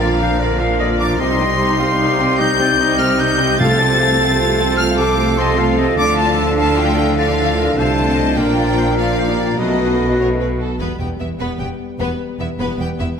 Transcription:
Already playing: double bass section A#1, trombone section F2 F3, cello section A#2, french horn section D4 F4, trumpet section A#4
0.00 viola section D3 F4, violin section D5 F5, clarinet D5, flute F5
0.20 viola section F3 D4, violin section A#4 F5, clarinet C5
0.39 viola section D3 F4, clarinet A#4, violin section D5
0.59 viola section F3 D4, violin section A#4 F5, clarinet F5
0.79 viola section D3 F4, violin section D5, clarinet D#5
0.99 viola section F3 D4, violin section A#4 F5 D6, clarinet D5, flute D6
1.19 double bass section C2, trombone section C3 G3, cello section C3, viola section G3 D#4, french horn section C4 D#4, violin section D#4 C5 C6, trumpet section G4, clarinet D#5, flute C6
1.39 viola section C4, violin section G4 D#5
1.59 viola section G3 D#4, violin section D#4 C5
1.78 viola section C4, violin section G4 D#5, clarinet F5
1.99 viola section G3 D#4, violin section D#4 C5
2.20 viola section C4, violin section G4 D#5
2.39 viola section G3 D#4, violin section D#4 C5 G6, clarinet D#5, flute G6
2.60 viola section C4, violin section G4 D#5, clarinet D5
2.79 viola section G3 D#4, violin section D#4 C5, clarinet D#5
2.98 viola section C4, violin section G4 D#5 F6, flute F6
3.19 viola section G3 D#4, violin section D#4 C5 G6, flute G6
3.39 viola section C4, violin section G4 D#5
3.58 timpani C3, trombone section F3, viola section A3 F4, french horn section F4, trumpet section A4, violin section A4 F5 A6, clarinet F5, flute A6
3.78 viola section C4 A4, violin section F4 A5, clarinet D5
3.98 viola section A3 F4, violin section A4 F5, clarinet C5
4.18 viola section C4 A4, violin section F4 A5
4.38 viola section A3 F4, violin section A4 F5
4.58 viola section C4 A4, violin section F4 A5
4.77 viola section A3 F4, violin section F5 F6, flute F6
4.81 violin section A4
4.98 viola section C4 A4, violin section F4 A5 D6, flute D6
5.18 viola section A3 F4, violin section A4 F5
5.38 viola section C4 A4, violin section F4 A5 C6, clarinet D#5, flute C6
5.58 viola section A3 F4, violin section A4 F5, clarinet F5
5.78 viola section C4 A4, violin section F4 A5, clarinet D#5
5.97 double bass section D2, trombone section A2, cello section D3, viola section A3 D4, french horn section D4, violin section F4 F5 D6, clarinet D5, flute D6
6.18 flute A5, violin section A5
6.57 viola section A3 D4, violin section F4 F5 A5, clarinet F5, flute A5
6.78 flute G5, violin section G5
7.17 viola section A3 D4, violin section F4 F5, clarinet D5, flute F5
7.38 clarinet A4
7.58 clarinet A#4
7.77 double bass section C2, cello section C3, viola section D3 A3, violin section F4 F5 A5, clarinet C5, flute A5
8.08 violin section D#5
8.37 double bass section A#1, trombone section A#2 F3, cello section A#2, viola section A#3 D4, violin section F4 D5 G5, french horn section F4, clarinet A#4, trumpet section A#4, flute G5
8.57 clarinet D5
8.78 clarinet C5
8.97 viola section A#3 D4, violin section F4 D5 F5, clarinet D5, flute F5
9.19 clarinet C5
9.27 viola section D#4, violin section G4
9.38 clarinet D5
9.58 double bass section B1, trombone section F#2 A3, cello section B2, viola section F#3 F#4, french horn section B3 F#4, violin section A4 B4 D#5, trumpet section B4, clarinet D#5, flute D#5
10.19 violin section C#5
10.40 violin section B4
10.59 violin section A4
10.79 double bass section E1, cello section E2, french horn section G3 B3, viola section B3, violin section B3 B4
10.99 double bass section E1, cello section E2, viola section B3, violin section G4 G5
11.19 double bass section E1, cello section E2, viola section B3, violin section E4 E5
11.39 double bass section E1, cello section E2, violin section B3 B4, viola section B3
11.59 double bass section E1, cello section E2, viola section B3, violin section G4 G5
11.99 double bass section E1, cello section E2, violin section B3 B4, viola section B3
12.39 double bass section E1, cello section E2, viola section B3, violin section E4 E5
12.59 double bass section E1, cello section E2, viola section B3, violin section B3 B4
12.79 double bass section E1, cello section E2, viola section B3, violin section G4 G5
12.99 double bass section E1, cello section E2, viola section B3, violin section E4 E5

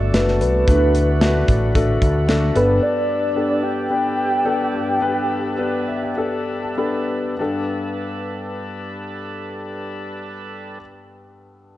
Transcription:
Already playing: analog synth bass G1, grand piano D3 A3 D4 F#4 A4, tonewheel organ D3 D4 F#4 A4, soft synth lead D5
0.14 analog synth bass F#1, grand piano A3 D4 F#4 A4, soft synth lead B4, snare, closed hi-hat
0.28 snare
0.40 analog synth bass C2, soft synth lead B4, closed hi-hat
0.68 analog synth bass D2, grand piano D3 A3 D4 E4 B4, tonewheel organ B4, kick, closed hi-hat
0.75 grand piano F#4
0.95 closed hi-hat
1.21 grand piano A3 D4 F#4 B4, snare, closed hi-hat
1.48 analog synth bass A1, kick, closed hi-hat
1.75 grand piano A3 D4 F#4 A4, kick, closed hi-hat
2.02 analog synth bass D2, kick, closed hi-hat
2.28 grand piano A3 D4 F#4 A4, snare, closed hi-hat
2.55 analog synth bass G1, grand piano G2 B3 D4 G4 A4, tonewheel organ G3 A4, soft synth lead B4, closed hi-hat
2.83 soft synth lead D5
3.36 grand piano B3 D4 G4 A4
3.63 soft synth lead G5
3.90 grand piano B3 D4 G4 B4
4.45 grand piano B3 D4 G4 A4
4.74 grand piano G2
5.01 grand piano B3 D4 G4 B4
5.58 grand piano B3 D4 G4 B4
5.88 grand piano E5
6.03 grand piano G5
6.17 grand piano B3 D4 G4 A4 G5
6.62 grand piano A5
6.77 grand piano B3 D4 G4 A4 B5
7.38 grand piano G2 B3 D4 G4 A4, tonewheel organ G3 D4 A4 B4

